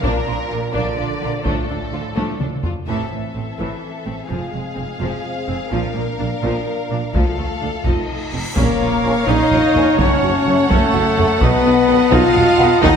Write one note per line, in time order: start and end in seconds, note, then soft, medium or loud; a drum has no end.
0.02 0.12 A#1 medium
0.02 0.75 A#2 medium
0.02 2.60 F3 medium
0.02 0.25 F3 medium
0.02 0.25 A#3 medium
0.02 0.26 D4 medium
0.02 0.25 D4 medium
0.02 2.60 D4 medium
0.02 0.73 A#4 medium
0.02 taiko medium
0.27 0.36 A#1 soft
0.27 0.35 F3 soft
0.27 0.35 D4 soft
0.27 0.35 F4 soft
0.49 0.60 A#1 soft
0.49 0.59 F3 soft
0.49 0.59 D4 soft
0.49 0.57 F4 soft
0.49 0.57 A#4 soft
0.73 0.84 A#1 medium
0.73 1.45 D3 medium
0.73 0.95 F3 soft
0.73 0.96 A#3 soft
0.73 0.96 D4 soft
0.73 1.44 D5 medium
0.73 taiko medium
0.96 1.07 A#1 soft
0.96 1.04 F3 soft
0.96 1.05 D4 soft
0.96 1.06 D4 soft
0.96 1.07 F4 soft
1.21 1.31 A#1 soft
1.21 1.29 F3 soft
1.21 1.29 D4 soft
1.21 1.31 F4 soft
1.21 1.31 A#4 soft
1.45 1.54 D2 soft
1.45 2.64 A2 soft
1.45 1.67 F3 soft
1.45 1.68 A3 soft
1.45 1.67 D4 soft
1.45 2.64 A4 soft
1.45 taiko medium
1.69 1.78 D2 soft
1.69 1.78 F3 soft
1.69 1.77 D4 soft
1.69 1.79 D4 soft
1.92 2.01 D2 soft
1.92 2.00 F3 soft
1.92 2.01 D4 soft
1.92 2.01 F4 soft
2.16 2.26 D2 soft
2.16 2.39 F3 soft
2.16 2.38 A3 soft
2.16 2.39 D4 soft
2.16 taiko high medium
2.40 2.48 D2 soft
2.40 2.49 F3 soft
2.40 2.50 D4 soft
2.40 2.49 D4 soft
2.40 taiko mid medium
2.63 2.72 D2 soft
2.63 2.73 F3 soft
2.63 2.73 D4 soft
2.63 2.73 F4 soft
2.63 taiko low medium
2.88 3.10 A1 medium
2.88 3.10 A2 medium
2.88 3.10 E3 medium
2.88 4.27 E3 soft
2.88 5.69 C4 soft
2.88 4.26 A4 soft
2.88 4.26 E5 soft
2.88 taiko soft
3.11 3.21 A1 soft
3.11 3.19 A2 soft
3.11 3.20 A3 soft
3.34 3.44 A1 soft
3.34 3.42 A2 soft
3.34 3.44 C4 soft
3.59 3.68 A1 soft
3.59 3.67 A2 soft
3.59 3.81 E3 soft
4.06 4.15 A1 soft
4.06 4.14 A2 soft
4.06 4.14 C4 soft
4.29 4.39 F1 soft
4.29 4.37 F2 soft
4.29 4.51 F3 soft
4.29 5.69 G#3 soft
4.29 5.69 G#4 soft
4.29 7.13 F5 soft
4.52 4.62 F1 soft
4.52 4.61 F2 soft
4.52 4.60 G#3 soft
4.75 4.86 F1 soft
4.75 4.85 F2 soft
4.75 4.83 C4 soft
4.99 5.10 F1 medium
4.99 5.07 F2 medium
4.99 5.23 F3 medium
5.48 5.57 F1 soft
5.48 5.56 F2 soft
5.48 5.56 C4 soft
5.70 5.81 A#1 medium
5.70 5.79 A#2 medium
5.70 5.94 F3 medium
5.70 7.12 A#3 soft
5.70 7.11 D4 soft
5.70 7.14 A#4 soft
5.70 taiko soft
5.94 6.05 A#1 soft
5.94 6.02 A#2 soft
5.94 6.03 A#3 soft
6.18 6.28 A#1 soft
6.18 6.26 A#2 soft
6.18 6.27 D4 soft
6.42 6.52 A#1 medium
6.42 6.50 A#2 medium
6.42 6.65 F3 medium
6.91 6.99 A#1 soft
6.91 6.99 A#2 soft
6.91 6.99 D4 soft
7.13 7.23 D2 medium
7.13 7.37 F3 medium
7.13 8.30 A3 soft
7.13 7.85 F4 soft
7.13 8.37 A4 soft
7.13 7.84 F5 soft
7.13 taiko medium
7.13 cymbal swell medium
7.38 7.46 D2 soft
7.38 7.47 D2 soft
7.38 7.46 A3 soft
7.62 7.70 D2 soft
7.62 7.70 D4 soft
7.85 7.94 F1 medium
7.85 7.93 F2 soft
7.85 8.08 F3 soft
7.85 8.33 D#4 soft
7.85 8.37 D#5 soft
7.85 taiko medium
8.32 8.41 F1 soft
8.32 8.40 F2 soft
8.32 8.41 C4 soft
8.56 8.66 A#1 medium
8.56 8.65 A#1 medium
8.56 8.64 A#2 medium
8.56 9.24 A#3 medium
8.56 9.95 A#3 medium
8.56 9.24 A#3 medium
8.56 8.78 C#4 medium
8.56 9.95 A#4 medium
8.56 9.24 A#4 medium
8.56 11.37 C#5 medium
8.56 9.95 C#5 medium
8.56 9.95 F5 medium
8.56 taiko medium
8.56 impact medium
8.80 8.90 A#1 medium
8.80 8.88 A#1 medium
8.80 8.89 A#2 medium
8.80 8.89 F4 medium
9.02 9.13 A#1 soft
9.02 9.12 A#1 medium
9.02 9.12 A#2 soft
9.02 9.11 F3 medium
9.02 9.12 C#4 medium
9.02 9.11 A#4 medium
9.26 9.36 A#1 medium
9.26 9.36 A#2 medium
9.26 9.50 C#4 medium
9.26 9.97 D#4 medium
9.26 9.98 D#5 medium
9.26 taiko medium
9.51 9.61 A#1 medium
9.51 9.59 A#1 medium
9.51 9.59 A#2 medium
9.51 9.60 F4 medium
9.51 taiko low medium
9.75 9.84 A#1 medium
9.75 9.83 A#1 medium
9.75 9.83 A#2 medium
9.75 9.83 F3 medium
9.75 9.84 C#4 medium
9.75 9.84 A#4 medium
9.75 taiko low soft
9.97 10.06 F#1 medium
9.97 10.08 F#1 medium
9.97 10.07 F#2 medium
9.97 12.83 F#3 medium
9.97 11.40 A3 medium
9.97 10.70 C#4 medium
9.97 10.69 C#4 medium
9.97 10.22 C#4 medium
9.97 10.68 C#5 medium
9.97 12.79 F#5 medium
9.97 12.96 A5 medium
9.97 taiko medium
10.22 10.32 F#1 medium
10.22 10.31 F#1 medium
10.22 10.30 F#2 medium
10.22 10.31 F#4 medium
10.45 10.56 F#1 soft
10.45 10.55 F#1 medium
10.45 10.53 F#2 medium
10.45 10.56 F#3 medium
10.45 10.56 A3 medium
10.45 10.54 A4 medium
10.69 10.79 F#1 medium
10.69 10.77 F#2 medium
10.69 11.39 A3 loud
10.69 11.43 A3 medium
10.69 10.92 C#4 medium
10.69 11.40 A4 medium
10.69 taiko medium
10.93 11.02 F#1 medium
10.93 11.03 F#1 medium
10.93 11.02 F#2 medium
10.93 11.02 F#4 medium
10.93 taiko low medium
11.17 11.27 F#1 medium
11.17 11.26 F#2 medium
11.17 11.26 F#3 medium
11.17 11.26 A3 medium
11.17 11.26 A4 medium
11.17 taiko low medium
11.40 11.50 B1 medium
11.40 11.49 B1 medium
11.40 11.50 B2 medium
11.40 12.11 B3 loud
11.40 12.15 B3 medium
11.40 12.84 B3 medium
11.40 11.64 D#4 medium
11.40 12.12 B4 medium
11.40 12.96 D#5 medium
11.40 taiko loud
11.65 11.74 B1 medium
11.65 11.73 B2 medium
11.65 11.74 F#4 medium
11.87 11.98 B1 medium
11.87 11.97 B2 medium
11.87 11.96 D#3 medium
11.87 11.97 B3 medium
11.87 11.98 B4 medium
12.11 12.21 B1 loud
12.11 12.19 B2 loud
12.11 12.34 D#4 medium
12.11 12.83 F4 loud
12.11 12.82 F4 loud
12.11 12.83 F5 loud
12.11 taiko medium
12.35 12.45 B1 medium
12.35 12.43 B2 medium
12.35 12.43 F#4 medium
12.35 taiko low medium
12.57 12.69 B1 medium
12.57 12.68 B1 medium
12.57 12.67 B2 medium
12.57 12.67 D#3 medium
12.57 12.66 B3 medium
12.57 12.67 B4 medium
12.57 taiko low medium
12.81 12.91 D#2 loud
12.81 12.92 D#2 loud
12.81 12.91 D#3 loud
12.81 12.96 A#3 loud
12.81 12.96 D#4 loud
12.81 12.96 A#4 loud
12.81 12.96 D#5 loud
12.81 12.96 F#5 medium
12.81 taiko loud